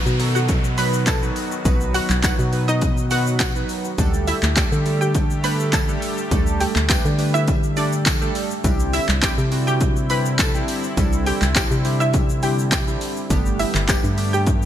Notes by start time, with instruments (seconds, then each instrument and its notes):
Already playing: analog synth pad D#3 F#3 B3 F#4, analog polysynth F#3 B3 D#4 F#4 B4, downlifter
0.06 fm bass B2, shaker
0.19 analog polysynth F#3 B3 D#4 F#4 A4, open hi-hat, shaker
0.35 synth pluck F#4 F#5, shaker
0.49 kick, closed hi-hat, tambourine, shaker
0.64 shaker
0.78 analog polysynth F#3 B3 D#4 F#4 B4, synth pluck B4 B5, open hi-hat, tambourine, shaker
0.94 shaker
1.07 synth pluck A4 A5, kick, clap, closed hi-hat, tambourine, shaker
1.22 analog polysynth F#3 B3 D#4 F#4 B4, shaker
1.36 open hi-hat, tambourine, shaker
1.52 shaker
1.65 fm bass B1, analog polysynth F#3 B3 D#4 F#4 B4, kick, closed hi-hat, tambourine, shaker
1.81 shaker
1.94 synth pluck F#4 F#5, open hi-hat, tambourine, shaker
2.10 fm bass B1, clap, shaker
2.23 analog polysynth F#3 B3 D#4 F#4 B4, synth pluck F#4 F#5, kick, clap, closed hi-hat, tambourine, shaker
2.39 fm bass B2, shaker
2.53 analog polysynth F#3 B3 D#4 F#4 B4, open hi-hat, shaker
2.68 synth pluck D#4 D#5, shaker
2.81 kick, closed hi-hat, tambourine, shaker
2.97 shaker
3.11 analog polysynth F#3 B3 D#4 F#4 B4, synth pluck F#4 F#5, open hi-hat, tambourine, shaker
3.27 shaker
3.40 synth pluck F#4 F#5, kick, clap, closed hi-hat, tambourine, shaker
3.55 analog polysynth F#3 B3 D#4 F#4 B4, shaker
3.69 open hi-hat, tambourine, shaker
3.85 shaker
3.98 fm bass D2, analog synth pad D3 G3 A3 G4, analog polysynth G3 A3 D4 G4 A4, kick, closed hi-hat, tambourine, shaker
4.14 shaker
4.27 synth pluck E4 E5, open hi-hat, tambourine, shaker
4.43 fm bass D2, clap, shaker
4.56 analog polysynth G3 A3 D4 G4 A4, synth pluck G4 G5, kick, clap, closed hi-hat, tambourine, shaker
4.72 fm bass D3, shaker
4.85 analog polysynth G3 A3 D4 G4 A4, open hi-hat, shaker
5.01 synth pluck G4 G5, shaker
5.15 kick, closed hi-hat, tambourine, shaker
5.30 shaker
5.44 analog polysynth G3 A3 D4 G4 A4, synth pluck B4 B5, open hi-hat, tambourine, shaker
5.60 shaker
5.73 synth pluck A4 A5, kick, clap, closed hi-hat, tambourine, shaker
5.88 analog polysynth G3 A3 D4 G4 A4, shaker
6.02 open hi-hat, tambourine, shaker
6.18 shaker
6.31 fm bass D2, analog polysynth G3 A3 D4 G4 A4, kick, closed hi-hat, tambourine, shaker
6.47 shaker
6.60 synth pluck G4 G5, open hi-hat, tambourine, shaker
6.76 fm bass D2, clap, shaker
6.89 analog polysynth G3 A3 D4 G4 B4, synth pluck G4 G5, kick, clap, closed hi-hat, tambourine, shaker
7.05 fm bass D3, shaker
7.18 analog polysynth G3 A3 D4 G4 B4, open hi-hat, tambourine, shaker
7.34 synth pluck E4 E5, shaker
7.48 kick, closed hi-hat, tambourine, shaker
7.63 shaker
7.77 analog polysynth G3 A3 D4 G4 A4, synth pluck D4 D5, open hi-hat, tambourine, shaker
7.93 shaker
8.06 kick, clap, closed hi-hat, tambourine, shaker
8.21 analog polysynth G3 A3 D4 G4 A4, shaker
8.35 open hi-hat, tambourine, shaker
8.51 shaker
8.64 fm bass C2, analog polysynth G3 C4 D4 E4 G4, analog synth pad C4 E4, kick, closed hi-hat, tambourine, shaker
8.80 shaker
8.93 synth pluck E4 E5, open hi-hat, tambourine, shaker
9.09 fm bass C2, clap, shaker
9.22 analog polysynth G3 C4 D4 E4 G4, synth pluck G4 G5, kick, clap, closed hi-hat, tambourine, shaker
9.38 fm bass C3, shaker
9.52 analog polysynth G3 C4 D4 E4 F#4, open hi-hat, tambourine, shaker
9.67 synth pluck G4 G5, shaker
9.81 kick, closed hi-hat, shaker
9.96 shaker
10.10 analog polysynth G3 C4 D4 E4 G4, synth pluck B4 B5, open hi-hat, tambourine, shaker
10.26 shaker
10.39 synth pluck A4 A5, kick, clap, closed hi-hat, tambourine, shaker
10.54 analog polysynth G3 C4 D4 E4 G4, shaker
10.68 open hi-hat, tambourine, shaker
10.84 shaker
10.97 fm bass C2, analog polysynth G3 C4 D4 E4 A4, kick, closed hi-hat, tambourine, shaker
11.13 shaker
11.26 synth pluck G4 G5, open hi-hat, tambourine, shaker
11.42 fm bass C2, clap, shaker
11.55 analog polysynth G3 C4 D4 E4 G4, synth pluck G4 G5, kick, clap, closed hi-hat, tambourine, shaker
11.71 fm bass C3, shaker
11.85 analog polysynth G3 C4 D4 E4 G4, open hi-hat, tambourine, shaker
12.00 synth pluck E4 E5, shaker
12.14 kick, closed hi-hat, tambourine, shaker
12.29 shaker
12.43 analog polysynth G3 C4 D4 E4 G4, synth pluck G4 G5, open hi-hat, tambourine, shaker
12.59 shaker
12.72 synth pluck G4 G5, kick, clap, closed hi-hat, tambourine, shaker
12.87 analog polysynth G3 C4 D4 E4 G4, shaker
13.01 open hi-hat, tambourine, shaker
13.17 shaker
13.30 fm bass G1, analog polysynth G3 A3 B3 D4 G4, analog synth pad A3 B3 G4, kick, closed hi-hat, tambourine, shaker
13.46 shaker
13.59 synth pluck E4 E5, open hi-hat, tambourine, shaker
13.75 fm bass G1, clap, shaker
13.88 analog polysynth G3 A3 B3 D4 G4, synth pluck G4 G5, kick, clap, closed hi-hat, tambourine, shaker
14.04 fm bass G2, shaker
14.17 analog polysynth G3 A3 B3 D4 G4, open hi-hat, tambourine, shaker
14.33 synth pluck G4 G5, shaker
14.47 kick, closed hi-hat, shaker
14.62 shaker